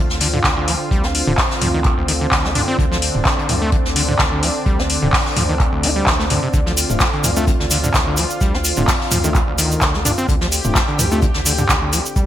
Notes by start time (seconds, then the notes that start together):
Already playing: D3 C4 D4 F4 A4 C5 F5
0.01 D5
0.10 D2, snare
0.20 D3, snare, closed hi-hat, open hi-hat
0.34 D3, mid tom
0.44 D2 D3, kick, snare, clap, closed hi-hat
0.57 D3
0.68 F3, closed hi-hat, open hi-hat
0.91 D2 G3, kick, closed hi-hat
1.03 D4, snare
1.14 closed hi-hat, open hi-hat
1.27 D1 D3, mid tom
1.38 kick, snare, clap, open hi-hat
1.51 snare
1.61 D2 F3, closed hi-hat, mid tom, open hi-hat
1.74 D#3
1.84 kick, clap, closed hi-hat
1.98 D2
2.08 D#3, closed hi-hat, open hi-hat
2.21 D3
2.32 D2 D3, kick, snare, clap, closed hi-hat
2.45 A3, snare
2.55 D4, closed hi-hat, mid tom, open hi-hat
2.68 C4
2.79 D2 D3 D4, kick, closed hi-hat
2.91 F3, snare
3.02 closed hi-hat, open hi-hat
3.15 D1, mid tom
3.25 kick, snare, clap, closed hi-hat
3.38 D3, closed hi-hat
3.49 D2 F3, closed hi-hat, mid tom, open hi-hat
3.62 A3
3.72 D3, kick, closed hi-hat
3.85 D2, snare
3.96 D3, snare, closed hi-hat, open hi-hat
4.09 D3, mid tom
4.19 D2 D3, kick, snare, clap, closed hi-hat
4.32 D3
4.43 F3, closed hi-hat, open hi-hat
4.66 D2 G3, kick, closed hi-hat
4.79 D4, snare
4.89 closed hi-hat, open hi-hat
5.02 D1 D3, mid tom
5.13 kick, snare, clap, open hi-hat
5.26 snare
5.36 D2 F3, closed hi-hat, mid tom, open hi-hat
5.49 D#3
5.60 kick, clap, closed hi-hat
5.73 D2
5.83 F4, closed hi-hat, open hi-hat
5.96 G3
6.07 D2 D#3, kick, snare, clap, closed hi-hat
6.19 A3, snare
6.30 D3, closed hi-hat, mid tom, open hi-hat
6.43 C3
6.54 D2 D3 F4, kick, closed hi-hat, shaker
6.66 F3, snare
6.77 closed hi-hat, open hi-hat, shaker
6.90 D1 A3 C4 D4 F4, mid tom, shaker
7.00 kick, snare, clap, closed hi-hat, shaker
7.13 D3, closed hi-hat
7.24 D2 F3, closed hi-hat, mid tom, open hi-hat, shaker
7.37 A3 C4 D4 F4, shaker
7.47 D3, kick, closed hi-hat, shaker
7.60 D2 D3, snare
7.70 D3, snare, closed hi-hat, open hi-hat, shaker
7.84 D3, mid tom, shaker
7.94 D2 D3, kick, snare, clap, closed hi-hat, shaker
8.07 D3
8.17 F3, closed hi-hat, open hi-hat, shaker
8.30 shaker
8.41 D2 G3, kick, closed hi-hat, shaker
8.54 D4, snare
8.64 closed hi-hat, open hi-hat, shaker
8.76 D1 D3 A3 C4 D4 F4, mid tom, shaker
8.88 kick, snare, clap, open hi-hat, shaker
9.01 snare
9.11 D2 F3, closed hi-hat, mid tom, open hi-hat, shaker
9.24 D#3 A3 C4 D4 F4, shaker
9.35 kick, clap, closed hi-hat, shaker
9.48 D2
9.58 D#3, closed hi-hat, open hi-hat, shaker
9.72 shaker
9.81 D2 D3, kick, snare, clap, closed hi-hat, shaker
9.94 A3, snare
10.05 D4, closed hi-hat, mid tom, open hi-hat, shaker
10.18 C4, shaker
10.29 D2 D3 G4, kick, closed hi-hat, shaker
10.41 F3, snare
10.52 closed hi-hat, open hi-hat, shaker
10.64 D1 A3 C4 D4 F4, mid tom, shaker
10.75 kick, snare, clap, closed hi-hat, shaker
10.88 D3, closed hi-hat
10.99 D2 F3, closed hi-hat, mid tom, open hi-hat, shaker
11.12 A3 C4 D4 F4, shaker
11.22 D3, kick, closed hi-hat, shaker
11.34 D2 D3, snare
11.46 D3, open hi-hat, shaker
11.58 D3, mid tom, shaker
11.69 D2 D3, kick, snare, clap, closed hi-hat, shaker
11.82 D3
11.93 F3, closed hi-hat, open hi-hat, shaker
12.06 shaker
12.16 D2 G3, kick, closed hi-hat, shaker